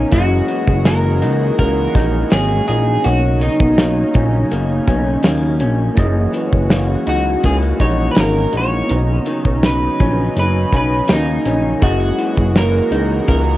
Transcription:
0.00 0.48 D#3 medium
0.00 0.51 A#3 medium
0.00 0.12 B3 medium
0.00 1.22 C#4 medium
0.00 0.12 D#4 soft
0.00 0.12 A#4 soft
0.00 0.13 D#5 medium
0.09 0.42 F#1 loud
0.09 3.05 F#2 medium
0.09 3.02 E3 medium
0.09 3.02 G#3 medium
0.09 2.99 A#3 medium
0.09 13.57 C#4 medium
0.09 3.00 E4 medium
0.09 3.02 F#4 medium
0.09 0.88 F#4 loud
0.09 3.01 G#4 medium
0.09 kick loud
0.09 closed hi-hat loud
0.14 3.02 D#5 medium
0.48 3.12 E3 medium
0.48 closed hi-hat medium
0.67 1.24 F#1 medium
0.67 kick loud
0.85 1.59 A#3 medium
0.85 1.58 A#4 loud
0.85 snare loud
0.85 closed hi-hat loud
1.22 1.51 C#2 medium
1.22 1.95 D#4 medium
1.22 closed hi-hat medium
1.59 1.88 C#2 medium
1.59 2.31 A#3 medium
1.59 2.32 A#4 loud
1.59 kick medium
1.59 closed hi-hat medium
1.95 2.24 A#1 medium
1.95 2.67 D#4 medium
1.95 kick medium
1.95 snare soft
1.95 closed hi-hat medium
2.30 2.61 G#1 loud
2.30 3.78 A#3 medium
2.30 2.67 G#4 loud
2.30 snare loud
2.30 closed hi-hat medium
2.68 2.98 A#1 medium
2.68 4.14 D#4 medium
2.68 3.06 G#4 loud
2.68 closed hi-hat medium
3.02 3.49 B1 loud
3.02 5.94 C#3 medium
3.02 5.95 F#3 medium
3.02 5.92 B3 medium
3.02 5.93 D#4 medium
3.02 5.95 D#4 medium
3.02 3.42 F#4 loud
3.02 5.94 A#4 medium
3.02 closed hi-hat loud
3.07 5.95 C#5 medium
3.41 6.33 D#3 medium
3.41 4.47 D#4 medium
3.41 closed hi-hat medium
3.60 4.04 B1 medium
3.60 kick medium
3.78 4.51 A#3 medium
3.78 snare loud
3.78 closed hi-hat loud
4.14 4.44 A#1 medium
4.14 4.87 C#4 medium
4.14 kick loud
4.14 closed hi-hat medium
4.51 4.81 F#1 medium
4.51 5.24 A#3 medium
4.51 closed hi-hat medium
4.87 5.17 B1 loud
4.87 5.60 C#4 medium
4.87 kick medium
4.87 closed hi-hat medium
5.23 5.62 D#2 loud
5.23 6.36 A#3 medium
5.23 snare loud
5.23 closed hi-hat medium
5.60 5.90 A#1 loud
5.60 7.07 C#4 medium
5.60 closed hi-hat medium
5.94 6.27 F#1 loud
5.94 8.90 F#2 medium
5.94 8.87 E3 medium
5.94 8.87 G#3 medium
5.94 8.84 A#3 medium
5.94 8.85 E4 medium
5.94 8.87 F#4 loud
5.94 8.86 G#4 medium
5.94 kick loud
5.94 closed hi-hat medium
5.99 8.87 D#5 medium
6.33 8.97 E3 medium
6.33 closed hi-hat medium
6.53 6.96 F#1 loud
6.53 kick loud
6.70 7.44 A#3 medium
6.70 snare loud
6.70 closed hi-hat loud
7.07 7.36 C#2 medium
7.07 7.80 D#4 medium
7.07 7.42 F#4 medium
7.07 closed hi-hat medium
7.44 7.73 C#2 medium
7.44 8.17 A#3 medium
7.44 7.55 G#4 medium
7.44 kick medium
7.44 closed hi-hat medium
7.62 closed hi-hat medium
7.80 8.09 A#1 medium
7.80 8.54 D#4 medium
7.80 8.11 C#5 medium
7.80 kick medium
7.80 closed hi-hat medium
8.11 8.18 B4 medium
8.11 closed hi-hat medium
8.16 8.47 G#1 loud
8.16 11.08 A#3 medium
8.16 8.52 A#4 loud
8.16 snare loud
8.53 8.82 A#1 medium
8.53 10.00 D#4 medium
8.53 closed hi-hat medium
8.57 9.65 C#5 loud
8.87 9.19 B1 loud
8.87 11.79 C#3 medium
8.87 11.79 F#3 medium
8.87 11.77 B3 medium
8.87 11.79 D#4 loud
8.87 11.78 D#4 medium
8.87 11.79 A#5 medium
8.87 closed hi-hat medium
8.92 8.97 C5 medium
8.99 11.83 C#5 medium
9.26 12.18 D#3 medium
9.26 closed hi-hat medium
9.45 9.89 B1 loud
9.45 kick medium
9.63 10.38 B4 loud
9.63 snare loud
9.63 closed hi-hat loud
10.00 10.29 A#1 medium
10.00 10.73 C#4 medium
10.00 kick loud
10.00 closed hi-hat medium
10.36 10.66 F#1 loud
10.36 10.75 B4 medium
10.36 closed hi-hat medium
10.73 11.02 B1 medium
10.73 11.45 C#4 medium
10.73 11.12 B4 medium
10.73 kick medium
10.73 closed hi-hat medium
11.08 11.39 D#2 medium
11.08 12.21 A#3 medium
11.08 snare loud
11.08 closed hi-hat medium
11.12 11.86 D#4 loud
11.45 11.75 A#1 medium
11.45 12.91 C#4 medium
11.45 closed hi-hat medium
11.79 13.57 E3 medium
11.79 13.57 G#3 medium
11.79 13.57 A#3 medium
11.79 13.57 E4 medium
11.79 13.57 F#4 medium
11.79 13.57 G#4 medium
11.79 kick loud
11.79 closed hi-hat loud
11.83 12.12 F#1 loud
11.83 13.57 F#2 medium
11.83 12.57 F#4 loud
11.83 13.57 D#5 medium
12.00 closed hi-hat medium
12.18 13.57 E3 medium
12.18 closed hi-hat medium
12.37 12.81 F#1 medium
12.37 kick medium
12.56 13.28 A#3 medium
12.56 13.27 A#4 loud
12.56 snare loud
12.56 closed hi-hat loud
12.91 13.21 C#2 medium
12.91 13.57 D#4 medium
12.91 closed hi-hat medium
13.28 13.57 C#2 loud
13.28 13.57 A#3 medium
13.28 13.57 A#4 loud
13.28 kick medium
13.28 closed hi-hat medium

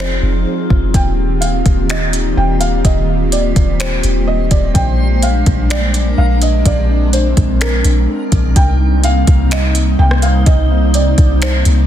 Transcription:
0.00 0.21 F1 loud
0.00 0.90 F3 medium
0.00 0.91 G#3 medium
0.00 4.71 C4 medium
0.00 0.90 D#4 medium
0.00 0.91 D#4 medium
0.00 0.91 F4 medium
0.00 4.71 F4 medium
0.00 0.90 G#4 medium
0.00 0.44 C5 medium
0.00 finger snap loud
0.23 0.46 F1 loud
0.70 0.93 F1 loud
0.70 kick loud
0.94 1.63 D#1 loud
0.94 4.71 D#3 medium
0.94 4.71 G3 medium
0.94 6.62 A#3 medium
0.94 4.71 D#4 medium
0.94 4.71 G4 medium
0.94 4.71 C5 medium
0.94 1.40 G5 medium
0.94 kick loud
0.94 closed hi-hat medium
1.41 1.86 F5 medium
1.41 closed hi-hat medium
1.66 2.34 D#1 loud
1.66 kick loud
1.66 closed hi-hat medium
1.90 2.34 D#5 medium
1.90 finger snap loud
1.90 closed hi-hat medium
2.13 closed hi-hat medium
2.37 2.83 D#1 loud
2.37 2.60 G5 medium
2.60 2.83 F5 medium
2.60 closed hi-hat medium
2.85 3.53 D#1 loud
2.85 3.30 D#5 medium
2.85 kick loud
2.85 closed hi-hat medium
3.32 3.77 D5 medium
3.32 closed hi-hat medium
3.56 4.02 D#1 loud
3.56 kick loud
3.56 closed hi-hat medium
3.80 4.25 C5 medium
3.80 finger snap loud
3.80 closed hi-hat medium
4.03 4.49 D#1 loud
4.03 closed hi-hat medium
4.27 4.50 D#5 medium
4.51 4.74 D#1 loud
4.51 4.74 D5 medium
4.51 kick medium
4.51 closed hi-hat medium
4.74 5.44 A#1 loud
4.74 8.52 G#3 medium
4.74 8.52 D4 medium
4.74 8.52 A#4 medium
4.74 5.19 G5 medium
4.74 kick loud
4.74 closed hi-hat medium
5.23 5.68 F5 medium
5.23 closed hi-hat medium
5.46 6.15 A#1 loud
5.46 kick loud
5.46 closed hi-hat medium
5.70 6.15 D5 medium
5.70 finger snap loud
5.70 closed hi-hat medium
5.94 closed hi-hat medium
6.18 6.64 A#1 loud
6.18 6.41 F5 medium
6.42 6.65 D#5 medium
6.42 closed hi-hat medium
6.66 7.34 A#1 loud
6.66 8.54 C4 medium
6.66 7.11 D5 medium
6.66 kick loud
6.66 closed hi-hat medium
7.13 7.58 C5 medium
7.13 closed hi-hat medium
7.37 7.83 A#1 loud
7.37 kick loud
7.37 closed hi-hat medium
7.61 8.06 A#4 medium
7.61 finger snap loud
7.61 closed hi-hat medium
7.84 8.08 A#1 loud
7.84 closed hi-hat medium
8.32 8.55 A#1 loud
8.32 kick loud
8.32 closed hi-hat medium
8.56 9.25 C2 loud
8.56 11.87 C3 medium
8.56 11.87 G3 medium
8.56 11.87 A#3 medium
8.56 10.45 C4 medium
8.56 11.87 D#4 medium
8.56 10.45 C5 loud
8.56 9.01 G5 loud
8.56 kick loud
8.56 closed hi-hat medium
9.04 9.49 F5 loud
9.04 closed hi-hat medium
9.27 9.96 C2 loud
9.27 kick loud
9.27 closed hi-hat medium
9.51 9.96 D#5 medium
9.51 finger snap loud
9.51 closed hi-hat medium
9.75 closed hi-hat medium
9.99 10.45 C2 loud
9.99 10.22 G5 loud
10.11 cross-stick medium
10.22 10.45 F5 medium
10.22 closed hi-hat medium
10.46 11.15 C2 loud
10.46 11.87 C4 medium
10.46 10.91 D#5 loud
10.46 11.87 D6 medium
10.46 kick loud
10.46 closed hi-hat medium
10.94 11.39 D5 medium
10.94 closed hi-hat medium
11.18 11.64 C2 loud
11.18 kick loud
11.18 closed hi-hat medium
11.42 11.87 C5 medium
11.42 finger snap loud
11.42 closed hi-hat medium
11.65 11.87 C2 loud
11.65 closed hi-hat medium

